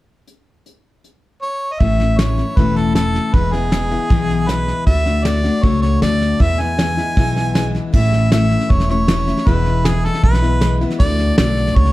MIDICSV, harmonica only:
0, 0, Header, 1, 2, 480
1, 0, Start_track
1, 0, Key_signature, 3, "major"
1, 0, Tempo, 383142
1, 345, Time_signature, 4, 2, 24, 8
1, 14941, End_track
2, 0, Start_track
2, 0, Title_t, "Harmonica"
2, 0, Program_c, 0, 22
2, 1778, Note_on_c, 0, 73, 77
2, 2168, Note_on_c, 0, 75, 52
2, 2187, Note_off_c, 0, 73, 0
2, 2254, Note_on_c, 0, 76, 67
2, 2273, Note_off_c, 0, 75, 0
2, 2736, Note_on_c, 0, 73, 66
2, 2755, Note_off_c, 0, 76, 0
2, 3224, Note_on_c, 0, 71, 66
2, 3243, Note_off_c, 0, 73, 0
2, 3466, Note_on_c, 0, 69, 60
2, 3485, Note_off_c, 0, 71, 0
2, 3692, Note_off_c, 0, 69, 0
2, 3699, Note_on_c, 0, 69, 72
2, 4185, Note_on_c, 0, 71, 71
2, 4203, Note_off_c, 0, 69, 0
2, 4423, Note_on_c, 0, 68, 82
2, 4442, Note_off_c, 0, 71, 0
2, 5625, Note_on_c, 0, 71, 77
2, 5644, Note_off_c, 0, 68, 0
2, 6090, Note_off_c, 0, 71, 0
2, 6097, Note_on_c, 0, 76, 79
2, 6580, Note_on_c, 0, 74, 78
2, 6599, Note_off_c, 0, 76, 0
2, 7060, Note_on_c, 0, 73, 76
2, 7079, Note_off_c, 0, 74, 0
2, 7285, Note_off_c, 0, 73, 0
2, 7292, Note_on_c, 0, 73, 82
2, 7521, Note_off_c, 0, 73, 0
2, 7546, Note_on_c, 0, 74, 83
2, 8034, Note_on_c, 0, 76, 81
2, 8053, Note_off_c, 0, 74, 0
2, 8273, Note_on_c, 0, 80, 81
2, 8291, Note_off_c, 0, 76, 0
2, 9708, Note_off_c, 0, 80, 0
2, 9954, Note_on_c, 0, 76, 74
2, 10395, Note_off_c, 0, 76, 0
2, 10434, Note_on_c, 0, 76, 73
2, 10914, Note_on_c, 0, 73, 83
2, 10933, Note_off_c, 0, 76, 0
2, 11148, Note_off_c, 0, 73, 0
2, 11157, Note_on_c, 0, 73, 81
2, 11869, Note_on_c, 0, 71, 81
2, 11888, Note_off_c, 0, 73, 0
2, 12354, Note_on_c, 0, 68, 71
2, 12373, Note_off_c, 0, 71, 0
2, 12591, Note_on_c, 0, 69, 74
2, 12609, Note_off_c, 0, 68, 0
2, 12818, Note_off_c, 0, 69, 0
2, 12826, Note_on_c, 0, 71, 73
2, 13493, Note_off_c, 0, 71, 0
2, 13781, Note_on_c, 0, 74, 86
2, 14227, Note_off_c, 0, 74, 0
2, 14255, Note_on_c, 0, 74, 71
2, 14738, Note_on_c, 0, 73, 78
2, 14757, Note_off_c, 0, 74, 0
2, 14941, Note_off_c, 0, 73, 0
2, 14941, End_track
0, 0, End_of_file